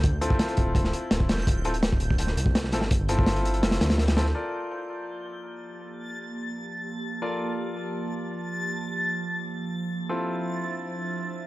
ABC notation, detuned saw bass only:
X:1
M:4/4
L:1/8
Q:1/4=167
K:Gm
V:1 name="Detuned saw bass" clef=bass
D,,2 z D,,,2 z D,,, =E,,, | D,,,4- D,,, C,,2 G,,,- | G,,,4 F,,, D,,3 | z8 |
z8 | z8 | z8 | z8 |]